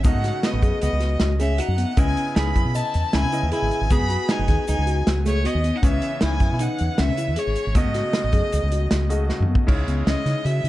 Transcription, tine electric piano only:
0, 0, Header, 1, 2, 480
1, 0, Start_track
1, 0, Key_signature, 4, "minor"
1, 0, Tempo, 385604
1, 59, Time_signature, 5, 2, 24, 8
1, 13306, End_track
2, 0, Start_track
2, 0, Title_t, "Tine electric piano"
2, 0, Program_c, 0, 4
2, 52, Note_on_c, 0, 59, 78
2, 223, Note_off_c, 0, 59, 0
2, 300, Note_on_c, 0, 66, 74
2, 636, Note_off_c, 0, 66, 0
2, 776, Note_on_c, 0, 68, 73
2, 1114, Note_off_c, 0, 68, 0
2, 1247, Note_on_c, 0, 66, 68
2, 1420, Note_off_c, 0, 66, 0
2, 1491, Note_on_c, 0, 66, 79
2, 1663, Note_off_c, 0, 66, 0
2, 1735, Note_on_c, 0, 68, 67
2, 1905, Note_off_c, 0, 68, 0
2, 1979, Note_on_c, 0, 66, 75
2, 2148, Note_off_c, 0, 66, 0
2, 2218, Note_on_c, 0, 59, 74
2, 2387, Note_off_c, 0, 59, 0
2, 2458, Note_on_c, 0, 61, 82
2, 2796, Note_off_c, 0, 61, 0
2, 2940, Note_on_c, 0, 63, 68
2, 3109, Note_off_c, 0, 63, 0
2, 3180, Note_on_c, 0, 64, 73
2, 3349, Note_off_c, 0, 64, 0
2, 3421, Note_on_c, 0, 75, 76
2, 3758, Note_off_c, 0, 75, 0
2, 3900, Note_on_c, 0, 61, 77
2, 4069, Note_off_c, 0, 61, 0
2, 4138, Note_on_c, 0, 64, 71
2, 4308, Note_off_c, 0, 64, 0
2, 4379, Note_on_c, 0, 68, 77
2, 4716, Note_off_c, 0, 68, 0
2, 4862, Note_on_c, 0, 59, 84
2, 5030, Note_off_c, 0, 59, 0
2, 5104, Note_on_c, 0, 66, 75
2, 5440, Note_off_c, 0, 66, 0
2, 5579, Note_on_c, 0, 68, 75
2, 5916, Note_off_c, 0, 68, 0
2, 6059, Note_on_c, 0, 66, 78
2, 6228, Note_off_c, 0, 66, 0
2, 6300, Note_on_c, 0, 66, 81
2, 6469, Note_off_c, 0, 66, 0
2, 6541, Note_on_c, 0, 68, 75
2, 6709, Note_off_c, 0, 68, 0
2, 6774, Note_on_c, 0, 66, 77
2, 6945, Note_off_c, 0, 66, 0
2, 7024, Note_on_c, 0, 59, 71
2, 7191, Note_off_c, 0, 59, 0
2, 7247, Note_on_c, 0, 61, 86
2, 7589, Note_off_c, 0, 61, 0
2, 7730, Note_on_c, 0, 63, 75
2, 7902, Note_off_c, 0, 63, 0
2, 7975, Note_on_c, 0, 64, 73
2, 8145, Note_off_c, 0, 64, 0
2, 8216, Note_on_c, 0, 63, 73
2, 8554, Note_off_c, 0, 63, 0
2, 8691, Note_on_c, 0, 61, 81
2, 8862, Note_off_c, 0, 61, 0
2, 8937, Note_on_c, 0, 64, 78
2, 9106, Note_off_c, 0, 64, 0
2, 9177, Note_on_c, 0, 68, 80
2, 9514, Note_off_c, 0, 68, 0
2, 9656, Note_on_c, 0, 59, 78
2, 9825, Note_off_c, 0, 59, 0
2, 9894, Note_on_c, 0, 66, 77
2, 10232, Note_off_c, 0, 66, 0
2, 10375, Note_on_c, 0, 68, 76
2, 10713, Note_off_c, 0, 68, 0
2, 10858, Note_on_c, 0, 66, 69
2, 11026, Note_off_c, 0, 66, 0
2, 11089, Note_on_c, 0, 66, 73
2, 11260, Note_off_c, 0, 66, 0
2, 11332, Note_on_c, 0, 68, 67
2, 11502, Note_off_c, 0, 68, 0
2, 11570, Note_on_c, 0, 66, 75
2, 11741, Note_off_c, 0, 66, 0
2, 11812, Note_on_c, 0, 59, 69
2, 11982, Note_off_c, 0, 59, 0
2, 12049, Note_on_c, 0, 63, 81
2, 12220, Note_off_c, 0, 63, 0
2, 12291, Note_on_c, 0, 59, 70
2, 12461, Note_off_c, 0, 59, 0
2, 12537, Note_on_c, 0, 61, 74
2, 12706, Note_off_c, 0, 61, 0
2, 12778, Note_on_c, 0, 63, 76
2, 12946, Note_off_c, 0, 63, 0
2, 13016, Note_on_c, 0, 66, 71
2, 13185, Note_off_c, 0, 66, 0
2, 13260, Note_on_c, 0, 64, 65
2, 13306, Note_off_c, 0, 64, 0
2, 13306, End_track
0, 0, End_of_file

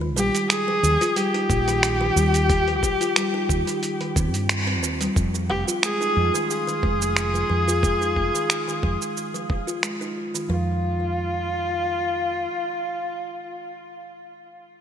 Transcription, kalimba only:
0, 0, Header, 1, 2, 480
1, 0, Start_track
1, 0, Key_signature, -4, "minor"
1, 0, Tempo, 666667
1, 1798, Time_signature, 4, 2, 24, 8
1, 10662, End_track
2, 0, Start_track
2, 0, Title_t, "Kalimba"
2, 0, Program_c, 0, 108
2, 10, Note_on_c, 0, 51, 73
2, 108, Note_off_c, 0, 51, 0
2, 119, Note_on_c, 0, 55, 78
2, 241, Note_off_c, 0, 55, 0
2, 490, Note_on_c, 0, 53, 78
2, 552, Note_off_c, 0, 53, 0
2, 600, Note_on_c, 0, 53, 76
2, 673, Note_off_c, 0, 53, 0
2, 727, Note_on_c, 0, 65, 76
2, 827, Note_off_c, 0, 65, 0
2, 837, Note_on_c, 0, 55, 77
2, 911, Note_off_c, 0, 55, 0
2, 968, Note_on_c, 0, 63, 75
2, 1073, Note_off_c, 0, 63, 0
2, 1208, Note_on_c, 0, 51, 77
2, 1313, Note_off_c, 0, 51, 0
2, 1445, Note_on_c, 0, 51, 78
2, 1546, Note_off_c, 0, 51, 0
2, 1559, Note_on_c, 0, 55, 71
2, 1681, Note_off_c, 0, 55, 0
2, 1927, Note_on_c, 0, 53, 70
2, 1990, Note_off_c, 0, 53, 0
2, 2037, Note_on_c, 0, 53, 72
2, 2111, Note_off_c, 0, 53, 0
2, 2165, Note_on_c, 0, 65, 74
2, 2266, Note_off_c, 0, 65, 0
2, 2276, Note_on_c, 0, 55, 79
2, 2351, Note_off_c, 0, 55, 0
2, 2405, Note_on_c, 0, 63, 76
2, 2512, Note_off_c, 0, 63, 0
2, 2644, Note_on_c, 0, 51, 75
2, 2751, Note_off_c, 0, 51, 0
2, 2885, Note_on_c, 0, 51, 74
2, 2986, Note_off_c, 0, 51, 0
2, 2995, Note_on_c, 0, 60, 74
2, 3119, Note_off_c, 0, 60, 0
2, 3363, Note_on_c, 0, 60, 77
2, 3465, Note_off_c, 0, 60, 0
2, 3475, Note_on_c, 0, 60, 71
2, 3592, Note_off_c, 0, 60, 0
2, 3606, Note_on_c, 0, 55, 80
2, 3707, Note_off_c, 0, 55, 0
2, 3847, Note_on_c, 0, 53, 71
2, 3910, Note_off_c, 0, 53, 0
2, 3957, Note_on_c, 0, 53, 78
2, 4031, Note_off_c, 0, 53, 0
2, 4088, Note_on_c, 0, 65, 66
2, 4188, Note_off_c, 0, 65, 0
2, 4197, Note_on_c, 0, 56, 78
2, 4271, Note_off_c, 0, 56, 0
2, 4325, Note_on_c, 0, 63, 76
2, 4431, Note_off_c, 0, 63, 0
2, 4565, Note_on_c, 0, 51, 72
2, 4672, Note_off_c, 0, 51, 0
2, 4805, Note_on_c, 0, 51, 74
2, 4906, Note_off_c, 0, 51, 0
2, 4918, Note_on_c, 0, 56, 79
2, 5040, Note_off_c, 0, 56, 0
2, 5286, Note_on_c, 0, 53, 68
2, 5350, Note_off_c, 0, 53, 0
2, 5397, Note_on_c, 0, 53, 70
2, 5471, Note_off_c, 0, 53, 0
2, 5528, Note_on_c, 0, 65, 69
2, 5627, Note_off_c, 0, 65, 0
2, 5637, Note_on_c, 0, 56, 75
2, 5711, Note_off_c, 0, 56, 0
2, 5767, Note_on_c, 0, 63, 65
2, 5872, Note_off_c, 0, 63, 0
2, 6007, Note_on_c, 0, 51, 68
2, 6113, Note_off_c, 0, 51, 0
2, 6247, Note_on_c, 0, 51, 72
2, 6347, Note_off_c, 0, 51, 0
2, 6359, Note_on_c, 0, 56, 66
2, 6481, Note_off_c, 0, 56, 0
2, 6727, Note_on_c, 0, 53, 71
2, 6790, Note_off_c, 0, 53, 0
2, 6836, Note_on_c, 0, 53, 67
2, 6911, Note_off_c, 0, 53, 0
2, 6964, Note_on_c, 0, 65, 68
2, 7066, Note_off_c, 0, 65, 0
2, 7077, Note_on_c, 0, 56, 72
2, 7151, Note_off_c, 0, 56, 0
2, 7208, Note_on_c, 0, 63, 69
2, 7313, Note_off_c, 0, 63, 0
2, 7446, Note_on_c, 0, 51, 67
2, 7552, Note_off_c, 0, 51, 0
2, 7558, Note_on_c, 0, 53, 77
2, 7781, Note_off_c, 0, 53, 0
2, 10662, End_track
0, 0, End_of_file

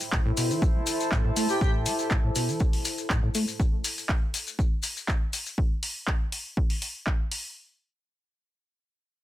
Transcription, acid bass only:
0, 0, Header, 1, 2, 480
1, 0, Start_track
1, 0, Key_signature, 0, "minor"
1, 0, Tempo, 495868
1, 1560, Time_signature, 4, 2, 24, 8
1, 8935, End_track
2, 0, Start_track
2, 0, Title_t, "Acid bass"
2, 0, Program_c, 0, 38
2, 121, Note_on_c, 0, 45, 82
2, 190, Note_off_c, 0, 45, 0
2, 246, Note_on_c, 0, 45, 103
2, 309, Note_off_c, 0, 45, 0
2, 361, Note_on_c, 0, 47, 76
2, 486, Note_on_c, 0, 52, 78
2, 501, Note_off_c, 0, 47, 0
2, 726, Note_on_c, 0, 57, 76
2, 741, Note_off_c, 0, 52, 0
2, 789, Note_off_c, 0, 57, 0
2, 1081, Note_on_c, 0, 45, 101
2, 1184, Note_off_c, 0, 45, 0
2, 1206, Note_on_c, 0, 45, 104
2, 1269, Note_off_c, 0, 45, 0
2, 1321, Note_on_c, 0, 57, 100
2, 1424, Note_off_c, 0, 57, 0
2, 1560, Note_on_c, 0, 45, 80
2, 1800, Note_on_c, 0, 57, 75
2, 1814, Note_off_c, 0, 45, 0
2, 1869, Note_off_c, 0, 57, 0
2, 2041, Note_on_c, 0, 45, 82
2, 2109, Note_off_c, 0, 45, 0
2, 2165, Note_on_c, 0, 45, 103
2, 2229, Note_off_c, 0, 45, 0
2, 2280, Note_on_c, 0, 47, 75
2, 2405, Note_on_c, 0, 52, 78
2, 2420, Note_off_c, 0, 47, 0
2, 2646, Note_on_c, 0, 57, 73
2, 2660, Note_off_c, 0, 52, 0
2, 2709, Note_off_c, 0, 57, 0
2, 3001, Note_on_c, 0, 45, 97
2, 3104, Note_off_c, 0, 45, 0
2, 3126, Note_on_c, 0, 45, 101
2, 3189, Note_off_c, 0, 45, 0
2, 3240, Note_on_c, 0, 57, 100
2, 3344, Note_off_c, 0, 57, 0
2, 8935, End_track
0, 0, End_of_file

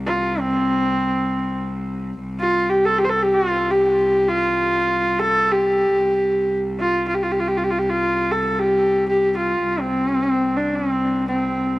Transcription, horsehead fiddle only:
0, 0, Header, 1, 2, 480
1, 0, Start_track
1, 0, Tempo, 500000
1, 11318, End_track
2, 0, Start_track
2, 0, Title_t, "Horsehead fiddle"
2, 0, Program_c, 0, 110
2, 61, Note_on_c, 0, 65, 78
2, 381, Note_on_c, 0, 60, 83
2, 395, Note_off_c, 0, 65, 0
2, 1581, Note_off_c, 0, 60, 0
2, 2309, Note_on_c, 0, 65, 86
2, 2584, Note_on_c, 0, 67, 73
2, 2598, Note_off_c, 0, 65, 0
2, 2738, Note_on_c, 0, 69, 82
2, 2752, Note_off_c, 0, 67, 0
2, 2865, Note_on_c, 0, 67, 83
2, 2879, Note_off_c, 0, 69, 0
2, 2920, Note_on_c, 0, 72, 59
2, 2934, Note_off_c, 0, 67, 0
2, 2972, Note_on_c, 0, 69, 77
2, 2986, Note_off_c, 0, 72, 0
2, 3098, Note_on_c, 0, 67, 73
2, 3113, Note_off_c, 0, 69, 0
2, 3211, Note_on_c, 0, 65, 90
2, 3225, Note_off_c, 0, 67, 0
2, 3558, Note_on_c, 0, 67, 80
2, 3572, Note_off_c, 0, 65, 0
2, 4118, Note_on_c, 0, 65, 91
2, 4132, Note_off_c, 0, 67, 0
2, 4987, Note_on_c, 0, 69, 96
2, 5001, Note_off_c, 0, 65, 0
2, 5299, Note_on_c, 0, 67, 88
2, 5314, Note_off_c, 0, 69, 0
2, 6312, Note_off_c, 0, 67, 0
2, 6527, Note_on_c, 0, 65, 80
2, 6786, Note_off_c, 0, 65, 0
2, 6797, Note_on_c, 0, 65, 71
2, 6861, Note_on_c, 0, 67, 66
2, 6875, Note_off_c, 0, 65, 0
2, 6942, Note_on_c, 0, 65, 70
2, 6956, Note_off_c, 0, 67, 0
2, 7028, Note_on_c, 0, 67, 63
2, 7042, Note_off_c, 0, 65, 0
2, 7098, Note_on_c, 0, 65, 67
2, 7112, Note_off_c, 0, 67, 0
2, 7178, Note_on_c, 0, 67, 67
2, 7193, Note_off_c, 0, 65, 0
2, 7270, Note_on_c, 0, 65, 63
2, 7285, Note_off_c, 0, 67, 0
2, 7335, Note_on_c, 0, 67, 66
2, 7350, Note_off_c, 0, 65, 0
2, 7401, Note_on_c, 0, 65, 63
2, 7415, Note_off_c, 0, 67, 0
2, 7477, Note_on_c, 0, 67, 65
2, 7491, Note_off_c, 0, 65, 0
2, 7580, Note_on_c, 0, 65, 77
2, 7594, Note_off_c, 0, 67, 0
2, 7982, Note_on_c, 0, 69, 67
2, 7996, Note_off_c, 0, 65, 0
2, 8250, Note_on_c, 0, 67, 76
2, 8264, Note_off_c, 0, 69, 0
2, 8716, Note_off_c, 0, 67, 0
2, 8726, Note_on_c, 0, 67, 73
2, 8962, Note_off_c, 0, 67, 0
2, 9000, Note_on_c, 0, 65, 70
2, 9410, Note_on_c, 0, 60, 81
2, 9424, Note_off_c, 0, 65, 0
2, 10143, Note_on_c, 0, 62, 69
2, 10158, Note_off_c, 0, 60, 0
2, 10324, Note_on_c, 0, 60, 74
2, 10338, Note_off_c, 0, 62, 0
2, 10814, Note_off_c, 0, 60, 0
2, 10826, Note_on_c, 0, 60, 65
2, 11318, Note_off_c, 0, 60, 0
2, 11318, End_track
0, 0, End_of_file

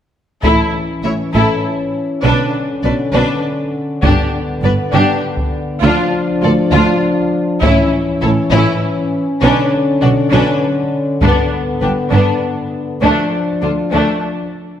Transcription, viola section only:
0, 0, Header, 1, 2, 480
1, 0, Start_track
1, 0, Tempo, 599401
1, 354, Time_signature, 6, 3, 24, 8
1, 11852, End_track
2, 0, Start_track
2, 0, Title_t, "Viola section"
2, 0, Program_c, 0, 48
2, 355, Note_on_c, 0, 64, 50
2, 577, Note_off_c, 0, 64, 0
2, 841, Note_on_c, 0, 64, 35
2, 905, Note_off_c, 0, 64, 0
2, 1075, Note_on_c, 0, 64, 42
2, 1297, Note_off_c, 0, 64, 0
2, 1792, Note_on_c, 0, 62, 51
2, 2015, Note_off_c, 0, 62, 0
2, 2283, Note_on_c, 0, 62, 32
2, 2347, Note_off_c, 0, 62, 0
2, 2515, Note_on_c, 0, 62, 43
2, 2736, Note_off_c, 0, 62, 0
2, 3231, Note_on_c, 0, 62, 51
2, 3454, Note_off_c, 0, 62, 0
2, 3713, Note_on_c, 0, 62, 39
2, 3777, Note_off_c, 0, 62, 0
2, 3945, Note_on_c, 0, 62, 49
2, 4170, Note_off_c, 0, 62, 0
2, 4660, Note_on_c, 0, 65, 65
2, 4888, Note_off_c, 0, 65, 0
2, 5139, Note_on_c, 0, 65, 45
2, 5203, Note_off_c, 0, 65, 0
2, 5382, Note_on_c, 0, 65, 55
2, 5608, Note_off_c, 0, 65, 0
2, 6097, Note_on_c, 0, 64, 57
2, 6326, Note_off_c, 0, 64, 0
2, 6580, Note_on_c, 0, 64, 47
2, 6644, Note_off_c, 0, 64, 0
2, 6829, Note_on_c, 0, 64, 54
2, 7052, Note_off_c, 0, 64, 0
2, 7547, Note_on_c, 0, 62, 57
2, 7771, Note_off_c, 0, 62, 0
2, 8027, Note_on_c, 0, 62, 43
2, 8091, Note_off_c, 0, 62, 0
2, 8267, Note_on_c, 0, 62, 55
2, 8491, Note_off_c, 0, 62, 0
2, 8984, Note_on_c, 0, 62, 52
2, 9209, Note_off_c, 0, 62, 0
2, 9470, Note_on_c, 0, 62, 39
2, 9534, Note_off_c, 0, 62, 0
2, 9706, Note_on_c, 0, 62, 43
2, 9930, Note_off_c, 0, 62, 0
2, 10427, Note_on_c, 0, 62, 45
2, 10651, Note_off_c, 0, 62, 0
2, 10907, Note_on_c, 0, 62, 29
2, 10971, Note_off_c, 0, 62, 0
2, 11155, Note_on_c, 0, 62, 40
2, 11376, Note_off_c, 0, 62, 0
2, 11852, End_track
0, 0, End_of_file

